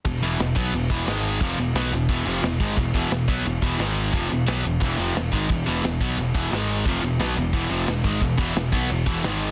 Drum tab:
CC |x-x-x-x-|x-x-x-x-|x-x-x-x-|x-x-x-x-|
SD |--o---o-|--o---o-|--o---o-|--o---o-|
BD |o--o-o--|o---o--o|oo-o-o--|o---o--o|

CC |x-x-x-x-|x-x-x-x-|x-x-x-x-|
SD |--o---o-|--o---o-|--o---o-|
BD |o--o-o--|o---o--o|oo-o-o--|